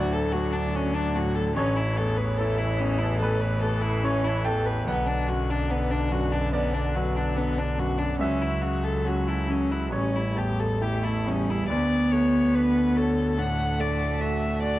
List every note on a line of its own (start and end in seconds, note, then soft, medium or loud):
0.00 1.58 D2 medium
0.00 1.59 D2 medium
0.00 1.16 A2 medium
0.00 1.53 F#3 medium
0.00 0.33 D4 medium
0.00 0.75 D4 medium
0.00 0.14 F#4 medium
0.00 0.75 F#4 medium
0.00 0.12 A4 medium
0.00 1.52 D5 loud
0.00 1.59 E5 loud
0.13 0.34 A4 medium
0.13 0.54 A4 medium
0.32 0.99 A3 medium
0.32 0.95 D4 medium
0.32 0.55 F#4 medium
0.53 0.77 D4 medium
0.53 1.36 A4 medium
0.75 0.96 C#4 medium
0.75 1.41 D4 medium
0.75 1.61 F#4 medium
0.95 1.17 D4 medium
0.95 1.60 D4 loud
1.15 1.57 A2 medium
1.15 1.37 F#4 medium
1.35 1.56 A4 medium
1.56 3.18 A1 medium
1.56 4.89 A1 medium
1.56 4.84 E3 medium
1.56 1.78 C#4 medium
1.56 2.40 A4 medium
1.56 3.18 C#5 loud
1.77 1.98 E4 medium
1.77 3.43 E5 medium
1.97 2.64 E2 medium
1.97 2.18 A4 medium
2.17 2.39 B4 medium
2.17 2.60 C#5 medium
2.38 3.06 E4 medium
2.38 2.60 A4 medium
2.38 3.02 A4 medium
2.58 2.80 E4 medium
2.58 3.23 C#5 medium
2.78 3.47 E2 medium
2.78 3.00 C#4 medium
2.98 3.19 E4 medium
3.03 3.63 A4 medium
3.20 4.84 A1 medium
3.20 3.42 A4 medium
3.20 4.01 B4 medium
3.25 4.05 C#5 medium
3.40 3.62 B4 medium
3.45 3.84 E5 medium
3.61 4.29 A3 medium
3.61 3.83 A4 medium
3.61 4.25 A4 medium
3.81 4.05 E4 medium
3.86 4.67 E5 medium
4.03 4.26 C#4 medium
4.03 4.71 E4 medium
4.03 4.43 C#5 medium
4.03 4.92 C#5 medium
4.24 4.47 E4 medium
4.24 4.91 A4 medium
4.45 4.88 E2 medium
4.45 4.67 A4 medium
4.45 4.84 G5 loud
4.45 4.92 A5 medium
4.66 4.87 B4 medium
4.66 4.92 E5 medium
4.87 6.49 B1 medium
4.87 8.21 B1 medium
4.87 8.17 D3 medium
4.87 5.08 B3 medium
4.87 5.71 B4 medium
4.87 6.50 F#5 medium
5.07 5.30 D4 medium
5.11 6.75 F#5 medium
5.28 5.95 F#2 medium
5.28 5.52 F#4 medium
5.50 5.72 D4 medium
5.50 5.92 D5 medium
5.70 5.93 B3 medium
5.70 6.37 D4 medium
5.70 6.33 B4 medium
5.91 6.13 D4 medium
5.91 6.55 D5 medium
6.11 6.78 F#2 medium
6.11 6.34 F#4 medium
6.32 6.53 D4 medium
6.32 6.95 B4 medium
6.52 8.16 B1 medium
6.52 6.75 B3 medium
6.52 8.17 D5 medium
6.52 7.37 D5 medium
6.74 6.97 D4 medium
6.74 7.17 F#5 medium
6.96 7.62 F#3 soft
6.96 7.18 F#4 medium
6.96 7.58 B4 medium
7.16 7.38 D4 medium
7.16 8.01 F#5 medium
7.36 7.60 B3 medium
7.36 8.04 D4 medium
7.36 8.25 D5 medium
7.58 7.81 D4 medium
7.58 8.25 B4 medium
7.78 8.20 F#2 medium
7.78 8.00 F#4 medium
7.78 8.25 B5 medium
7.98 8.19 D4 medium
7.98 9.97 F#5 medium
8.19 9.88 C#2 medium
8.19 9.94 C#2 medium
8.19 9.94 F#3 medium
8.19 8.43 C#4 medium
8.19 9.06 F#4 medium
8.19 9.89 E5 medium
8.42 8.63 E4 medium
8.42 12.33 C#6 medium
8.62 9.31 C#3 soft
8.62 8.85 F#4 medium
8.83 9.08 A4 medium
8.83 9.27 A4 medium
9.05 9.75 C#4 soft
9.05 9.30 F#4 medium
9.05 9.70 F#4 medium
9.28 9.51 E4 medium
9.28 10.35 A4 medium
9.48 9.92 C#3 soft
9.48 9.73 C#4 medium
9.71 9.93 E4 soft
9.71 9.97 F#4 medium
9.90 11.64 A1 medium
9.90 11.69 A1 medium
9.90 10.73 G3 medium
9.90 10.17 C#4 medium
9.90 10.77 C#5 medium
10.14 10.40 E4 medium
10.14 10.59 E5 medium
10.36 11.07 E2 soft
10.36 10.61 G4 medium
10.36 11.03 A4 medium
10.60 10.83 A4 soft
10.60 11.48 E5 medium
10.81 11.30 A3 medium
10.81 11.52 E4 medium
10.81 11.05 G4 medium
11.04 11.29 E4 medium
11.04 12.75 A4 medium
11.26 11.69 E2 soft
11.26 11.70 G3 medium
11.26 11.51 C#4 medium
11.26 11.73 G5 medium
11.49 11.68 E4 medium
11.49 11.73 E5 soft
11.69 14.79 D2 medium
11.69 13.33 D2 medium
11.69 13.39 B3 loud
11.69 12.55 D4 medium
11.69 12.13 D5 medium
12.12 12.79 A3 soft
12.12 14.63 F#4 medium
12.12 12.56 C#5 medium
12.55 13.37 D4 medium
12.55 13.21 F#4 medium
12.55 12.98 B4 medium
12.77 12.95 A4 medium
12.96 13.40 A4 medium
12.96 13.16 A4 medium
12.96 13.62 C#5 medium
13.17 13.79 A4 medium
13.38 14.04 A2 medium
13.38 14.79 A3 medium
13.38 14.21 D4 medium
13.38 13.81 F#5 medium
13.80 14.46 A3 soft
13.80 14.00 A4 medium
13.80 14.22 D5 medium
14.01 14.79 A4 medium
14.21 14.79 D4 medium
14.21 14.79 F#4 medium
14.21 14.62 E5 medium
14.62 14.79 F#4 medium
14.62 14.79 D5 medium